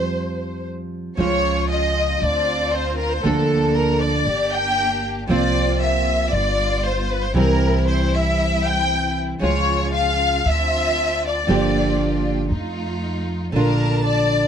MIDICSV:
0, 0, Header, 1, 5, 480
1, 0, Start_track
1, 0, Key_signature, -1, "major"
1, 0, Tempo, 515021
1, 1096, Time_signature, 4, 2, 24, 8
1, 13492, End_track
2, 0, Start_track
2, 0, Title_t, "Violin section"
2, 0, Program_c, 0, 48
2, 0, Note_on_c, 0, 72, 82
2, 630, Note_off_c, 0, 72, 0
2, 1105, Note_on_c, 0, 73, 76
2, 1548, Note_off_c, 0, 73, 0
2, 1581, Note_on_c, 0, 75, 78
2, 2059, Note_off_c, 0, 75, 0
2, 2068, Note_on_c, 0, 74, 79
2, 2538, Note_on_c, 0, 72, 73
2, 2542, Note_off_c, 0, 74, 0
2, 2770, Note_on_c, 0, 70, 74
2, 2777, Note_off_c, 0, 72, 0
2, 2884, Note_off_c, 0, 70, 0
2, 2898, Note_on_c, 0, 72, 74
2, 3010, Note_on_c, 0, 69, 82
2, 3017, Note_off_c, 0, 72, 0
2, 3491, Note_off_c, 0, 69, 0
2, 3500, Note_on_c, 0, 70, 80
2, 3730, Note_on_c, 0, 74, 81
2, 3736, Note_off_c, 0, 70, 0
2, 4210, Note_off_c, 0, 74, 0
2, 4219, Note_on_c, 0, 79, 90
2, 4694, Note_off_c, 0, 79, 0
2, 4939, Note_on_c, 0, 74, 85
2, 5381, Note_off_c, 0, 74, 0
2, 5421, Note_on_c, 0, 76, 81
2, 5887, Note_on_c, 0, 74, 85
2, 5895, Note_off_c, 0, 76, 0
2, 6368, Note_off_c, 0, 74, 0
2, 6385, Note_on_c, 0, 72, 74
2, 6616, Note_off_c, 0, 72, 0
2, 6629, Note_on_c, 0, 71, 74
2, 6738, Note_off_c, 0, 71, 0
2, 6753, Note_on_c, 0, 72, 76
2, 6861, Note_off_c, 0, 72, 0
2, 6873, Note_on_c, 0, 70, 84
2, 7308, Note_off_c, 0, 70, 0
2, 7353, Note_on_c, 0, 72, 81
2, 7582, Note_off_c, 0, 72, 0
2, 7591, Note_on_c, 0, 76, 80
2, 8063, Note_off_c, 0, 76, 0
2, 8068, Note_on_c, 0, 79, 85
2, 8544, Note_off_c, 0, 79, 0
2, 8782, Note_on_c, 0, 73, 85
2, 9229, Note_off_c, 0, 73, 0
2, 9271, Note_on_c, 0, 77, 90
2, 9746, Note_off_c, 0, 77, 0
2, 9766, Note_on_c, 0, 76, 88
2, 10474, Note_off_c, 0, 76, 0
2, 10508, Note_on_c, 0, 74, 76
2, 11441, Note_off_c, 0, 74, 0
2, 12628, Note_on_c, 0, 70, 77
2, 13064, Note_off_c, 0, 70, 0
2, 13100, Note_on_c, 0, 74, 80
2, 13492, Note_off_c, 0, 74, 0
2, 13492, End_track
3, 0, Start_track
3, 0, Title_t, "String section"
3, 0, Program_c, 1, 48
3, 1097, Note_on_c, 1, 61, 54
3, 1097, Note_on_c, 1, 65, 57
3, 2009, Note_off_c, 1, 61, 0
3, 2009, Note_off_c, 1, 65, 0
3, 2063, Note_on_c, 1, 60, 59
3, 2063, Note_on_c, 1, 62, 52
3, 2068, Note_on_c, 1, 65, 62
3, 2971, Note_off_c, 1, 60, 0
3, 2971, Note_off_c, 1, 62, 0
3, 2974, Note_off_c, 1, 65, 0
3, 3017, Note_on_c, 1, 62, 50
3, 3020, Note_on_c, 1, 69, 60
3, 3021, Note_on_c, 1, 58, 55
3, 3925, Note_off_c, 1, 62, 0
3, 3926, Note_off_c, 1, 69, 0
3, 3927, Note_off_c, 1, 58, 0
3, 3979, Note_on_c, 1, 58, 57
3, 3979, Note_on_c, 1, 62, 54
3, 3979, Note_on_c, 1, 67, 62
3, 4885, Note_off_c, 1, 58, 0
3, 4885, Note_off_c, 1, 62, 0
3, 4885, Note_off_c, 1, 67, 0
3, 4933, Note_on_c, 1, 58, 58
3, 4934, Note_on_c, 1, 60, 52
3, 4935, Note_on_c, 1, 65, 62
3, 5842, Note_off_c, 1, 58, 0
3, 5843, Note_off_c, 1, 60, 0
3, 5843, Note_off_c, 1, 65, 0
3, 5882, Note_on_c, 1, 55, 60
3, 5883, Note_on_c, 1, 59, 53
3, 5887, Note_on_c, 1, 65, 69
3, 6797, Note_off_c, 1, 55, 0
3, 6797, Note_off_c, 1, 59, 0
3, 6800, Note_off_c, 1, 65, 0
3, 6844, Note_on_c, 1, 55, 56
3, 6845, Note_on_c, 1, 64, 68
3, 6847, Note_on_c, 1, 60, 52
3, 8680, Note_off_c, 1, 55, 0
3, 8680, Note_off_c, 1, 64, 0
3, 8682, Note_off_c, 1, 60, 0
3, 8770, Note_on_c, 1, 61, 50
3, 8777, Note_on_c, 1, 65, 58
3, 9688, Note_off_c, 1, 61, 0
3, 9692, Note_off_c, 1, 65, 0
3, 9742, Note_on_c, 1, 60, 54
3, 9745, Note_on_c, 1, 62, 51
3, 9749, Note_on_c, 1, 65, 61
3, 10653, Note_off_c, 1, 60, 0
3, 10655, Note_off_c, 1, 62, 0
3, 10657, Note_off_c, 1, 65, 0
3, 10687, Note_on_c, 1, 58, 59
3, 10690, Note_on_c, 1, 65, 51
3, 10692, Note_on_c, 1, 67, 58
3, 11601, Note_off_c, 1, 58, 0
3, 11603, Note_off_c, 1, 65, 0
3, 11604, Note_off_c, 1, 67, 0
3, 11649, Note_on_c, 1, 63, 54
3, 11650, Note_on_c, 1, 57, 60
3, 11653, Note_on_c, 1, 65, 64
3, 12559, Note_off_c, 1, 63, 0
3, 12560, Note_off_c, 1, 57, 0
3, 12561, Note_off_c, 1, 65, 0
3, 12611, Note_on_c, 1, 62, 53
3, 12612, Note_on_c, 1, 81, 67
3, 13492, Note_off_c, 1, 62, 0
3, 13492, Note_off_c, 1, 81, 0
3, 13492, End_track
4, 0, Start_track
4, 0, Title_t, "Nylon-string guitar"
4, 0, Program_c, 2, 24
4, 0, Note_on_c, 2, 53, 71
4, 0, Note_on_c, 2, 55, 74
4, 0, Note_on_c, 2, 60, 79
4, 0, Note_on_c, 2, 65, 76
4, 1086, Note_off_c, 2, 55, 0
4, 1092, Note_on_c, 2, 49, 70
4, 1093, Note_off_c, 2, 60, 0
4, 1097, Note_off_c, 2, 53, 0
4, 1101, Note_on_c, 2, 53, 64
4, 1106, Note_on_c, 2, 56, 74
4, 1118, Note_off_c, 2, 65, 0
4, 1122, Note_on_c, 2, 65, 76
4, 2045, Note_off_c, 2, 49, 0
4, 2049, Note_off_c, 2, 53, 0
4, 2052, Note_off_c, 2, 56, 0
4, 2059, Note_off_c, 2, 65, 0
4, 3014, Note_on_c, 2, 50, 67
4, 3022, Note_on_c, 2, 53, 67
4, 3029, Note_on_c, 2, 58, 74
4, 3037, Note_on_c, 2, 62, 69
4, 3046, Note_on_c, 2, 69, 77
4, 3962, Note_off_c, 2, 50, 0
4, 3966, Note_off_c, 2, 53, 0
4, 3969, Note_off_c, 2, 58, 0
4, 3973, Note_off_c, 2, 62, 0
4, 3978, Note_off_c, 2, 69, 0
4, 4917, Note_on_c, 2, 48, 71
4, 4931, Note_on_c, 2, 53, 73
4, 4937, Note_on_c, 2, 58, 79
4, 4943, Note_on_c, 2, 60, 84
4, 4952, Note_on_c, 2, 65, 78
4, 5873, Note_off_c, 2, 48, 0
4, 5880, Note_off_c, 2, 53, 0
4, 5882, Note_off_c, 2, 58, 0
4, 5886, Note_off_c, 2, 60, 0
4, 5890, Note_off_c, 2, 65, 0
4, 6837, Note_on_c, 2, 48, 66
4, 6845, Note_on_c, 2, 52, 71
4, 6858, Note_on_c, 2, 55, 68
4, 6868, Note_on_c, 2, 60, 69
4, 6870, Note_on_c, 2, 64, 69
4, 8752, Note_off_c, 2, 48, 0
4, 8756, Note_on_c, 2, 49, 65
4, 8765, Note_off_c, 2, 52, 0
4, 8769, Note_on_c, 2, 53, 70
4, 8774, Note_off_c, 2, 55, 0
4, 8779, Note_off_c, 2, 60, 0
4, 8779, Note_on_c, 2, 56, 70
4, 8780, Note_off_c, 2, 64, 0
4, 8794, Note_on_c, 2, 65, 72
4, 9720, Note_off_c, 2, 49, 0
4, 9731, Note_off_c, 2, 56, 0
4, 10205, Note_off_c, 2, 53, 0
4, 10205, Note_off_c, 2, 65, 0
4, 10689, Note_on_c, 2, 50, 69
4, 10701, Note_on_c, 2, 53, 72
4, 10707, Note_on_c, 2, 58, 72
4, 10721, Note_on_c, 2, 67, 76
4, 10722, Note_on_c, 2, 62, 74
4, 11641, Note_off_c, 2, 50, 0
4, 11646, Note_off_c, 2, 53, 0
4, 11649, Note_off_c, 2, 58, 0
4, 11657, Note_off_c, 2, 62, 0
4, 11657, Note_off_c, 2, 67, 0
4, 12603, Note_on_c, 2, 50, 73
4, 12637, Note_on_c, 2, 62, 81
4, 12640, Note_on_c, 2, 65, 83
4, 13492, Note_off_c, 2, 50, 0
4, 13492, Note_off_c, 2, 62, 0
4, 13492, Note_off_c, 2, 65, 0
4, 13492, End_track
5, 0, Start_track
5, 0, Title_t, "Upright bass"
5, 0, Program_c, 3, 32
5, 0, Note_on_c, 3, 41, 65
5, 1005, Note_off_c, 3, 41, 0
5, 1096, Note_on_c, 3, 37, 60
5, 2008, Note_off_c, 3, 37, 0
5, 2068, Note_on_c, 3, 38, 64
5, 2974, Note_off_c, 3, 38, 0
5, 3026, Note_on_c, 3, 38, 66
5, 3930, Note_off_c, 3, 38, 0
5, 3976, Note_on_c, 3, 31, 63
5, 4883, Note_off_c, 3, 31, 0
5, 4927, Note_on_c, 3, 36, 65
5, 5840, Note_off_c, 3, 36, 0
5, 5897, Note_on_c, 3, 31, 66
5, 6805, Note_off_c, 3, 31, 0
5, 6844, Note_on_c, 3, 36, 67
5, 8680, Note_off_c, 3, 36, 0
5, 8775, Note_on_c, 3, 37, 60
5, 9691, Note_off_c, 3, 37, 0
5, 9744, Note_on_c, 3, 38, 61
5, 10654, Note_off_c, 3, 38, 0
5, 10707, Note_on_c, 3, 31, 68
5, 11612, Note_off_c, 3, 31, 0
5, 11655, Note_on_c, 3, 41, 67
5, 12562, Note_off_c, 3, 41, 0
5, 12610, Note_on_c, 3, 34, 69
5, 13492, Note_off_c, 3, 34, 0
5, 13492, End_track
0, 0, End_of_file